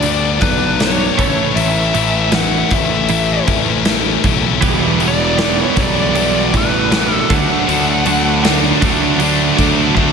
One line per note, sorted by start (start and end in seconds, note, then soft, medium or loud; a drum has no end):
0.00 0.42 D2 medium
0.00 0.39 G2 medium
0.00 0.40 D3 medium
0.00 0.45 D5 medium
0.00 open hi-hat medium
0.04 0.40 G3 medium
0.04 0.41 B3 medium
0.04 0.41 D4 medium
0.40 1.09 B1 medium
0.40 0.77 G2 medium
0.40 0.77 D3 medium
0.40 0.78 G3 medium
0.40 0.78 B3 medium
0.40 0.79 D4 medium
0.40 0.81 B4 medium
0.40 kick medium
0.40 open hi-hat soft
0.78 1.15 G2 medium
0.78 1.15 D3 loud
0.78 1.15 G3 loud
0.78 1.16 B3 medium
0.78 1.16 D4 medium
0.78 1.56 C#5 medium
0.78 snare loud
0.78 open hi-hat medium
1.15 1.53 A2 medium
1.15 1.54 E3 medium
1.15 1.54 A3 loud
1.15 1.54 C#4 loud
1.15 1.55 E4 loud
1.15 kick loud
1.19 1.36 A1 medium
1.19 open hi-hat soft
1.54 1.90 A1 medium
1.54 1.91 A2 medium
1.54 1.93 E3 medium
1.54 1.93 A3 medium
1.54 1.93 C#4 loud
1.54 1.95 E4 loud
1.54 2.29 E5 loud
1.54 open hi-hat medium
1.92 2.62 A1 medium
1.92 2.30 A2 medium
1.92 2.31 E3 medium
1.92 2.31 A3 medium
1.92 2.31 C#4 medium
1.92 2.33 E4 medium
1.92 open hi-hat medium
2.31 2.69 A2 medium
2.31 2.70 E3 medium
2.31 2.71 A3 loud
2.31 2.71 C#4 loud
2.31 2.71 E4 loud
2.31 2.74 F#5 loud
2.31 snare loud
2.31 open hi-hat medium
2.70 3.39 A1 medium
2.70 3.07 A2 medium
2.70 3.08 E3 medium
2.70 3.08 A3 medium
2.70 3.09 C#4 medium
2.70 3.10 E4 medium
2.70 3.45 E5 medium
2.70 kick medium
2.70 open hi-hat soft
3.08 3.46 A2 medium
3.08 3.46 E3 medium
3.08 3.47 A3 loud
3.08 3.47 C#4 medium
3.08 3.48 E4 medium
3.08 open hi-hat medium
3.47 4.15 A1 medium
3.47 3.86 A2 medium
3.47 3.86 E3 medium
3.47 3.86 A3 medium
3.47 3.88 C#4 medium
3.47 3.88 E4 medium
3.47 kick medium
3.47 open hi-hat medium
3.85 4.23 A2 medium
3.85 4.23 E3 medium
3.85 4.24 A3 loud
3.85 4.25 C#4 loud
3.85 4.25 E4 medium
3.85 snare loud
3.85 open hi-hat medium
4.24 4.58 B1 medium
4.24 4.61 A2 medium
4.24 4.61 E3 medium
4.24 4.61 A3 medium
4.24 4.61 C#4 medium
4.24 4.62 E4 medium
4.24 kick medium
4.24 open hi-hat medium
4.62 5.63 E1 medium
4.62 5.00 E2 medium
4.62 5.00 B2 medium
4.62 5.00 E3 medium
4.62 5.00 G3 loud
4.62 5.01 B3 loud
4.62 5.02 E4 loud
4.62 kick loud
4.62 open hi-hat medium
5.00 5.38 E2 medium
5.00 5.38 B2 medium
5.00 5.38 E3 medium
5.00 5.39 G3 medium
5.00 5.39 B3 medium
5.00 5.40 E4 medium
5.00 open hi-hat medium
5.08 5.60 D5 medium
5.38 5.77 E2 medium
5.38 5.77 B2 medium
5.38 5.76 E3 medium
5.38 5.77 G3 loud
5.38 5.78 B3 medium
5.38 5.77 E4 medium
5.38 snare loud
5.38 open hi-hat medium
5.60 5.81 C#5 medium
5.76 6.54 B1 medium
5.76 6.13 E2 medium
5.76 6.14 B2 medium
5.76 6.15 E3 medium
5.76 6.16 G3 medium
5.76 6.16 B3 medium
5.76 6.16 E4 medium
5.76 kick medium
5.76 snare soft
5.76 open hi-hat medium
5.82 6.53 D5 medium
6.15 6.52 E2 medium
6.15 6.52 B2 medium
6.15 6.52 E3 medium
6.15 6.53 G3 medium
6.15 6.53 B3 loud
6.15 6.54 E4 loud
6.15 open hi-hat medium
6.53 7.21 A1 loud
6.53 6.91 E2 medium
6.53 6.91 B2 medium
6.53 6.92 E3 medium
6.53 6.93 G3 medium
6.53 6.93 B3 medium
6.53 6.93 E4 loud
6.53 kick medium
6.53 open hi-hat medium
6.57 7.14 B4 loud
6.92 7.28 E2 medium
6.92 7.28 B2 loud
6.92 7.29 E3 medium
6.92 7.29 G3 loud
6.92 7.29 B3 loud
6.92 7.29 E4 loud
6.92 snare loud
6.92 open hi-hat medium
7.14 7.34 A4 loud
7.30 7.47 D2 medium
7.30 7.68 D3 loud
7.30 7.68 F#3 medium
7.30 7.68 A3 loud
7.30 7.69 D4 loud
7.30 9.95 F#5 loud
7.30 kick loud
7.30 open hi-hat medium
7.68 8.02 D2 loud
7.68 8.04 D3 loud
7.68 8.05 F#3 loud
7.68 8.05 A3 loud
7.68 8.05 D4 loud
7.68 open hi-hat medium
8.05 8.72 D2 medium
8.05 8.41 D3 medium
8.05 8.42 F#3 medium
8.05 8.42 A3 medium
8.05 8.43 D4 medium
8.05 open hi-hat medium
8.42 8.81 D3 medium
8.42 8.82 F#3 loud
8.42 8.82 A3 loud
8.42 8.82 D4 loud
8.42 snare loud
8.42 open hi-hat medium
8.82 9.49 D2 medium
8.82 9.19 D3 medium
8.82 9.19 F#3 medium
8.82 9.19 A3 medium
8.82 9.20 D4 medium
8.82 kick medium
8.82 open hi-hat medium
9.20 9.55 D3 medium
9.20 9.56 F#3 medium
9.20 9.57 A3 loud
9.20 9.57 D4 loud
9.20 open hi-hat medium
9.56 10.12 D2 loud
9.56 9.94 D3 medium
9.56 9.95 F#3 medium
9.56 9.96 A3 medium
9.56 9.96 D4 medium
9.56 kick medium
9.56 open hi-hat medium
9.95 10.12 D3 loud
9.95 10.12 F#3 medium
9.95 10.12 A3 loud
9.95 10.12 D4 loud
9.95 kick medium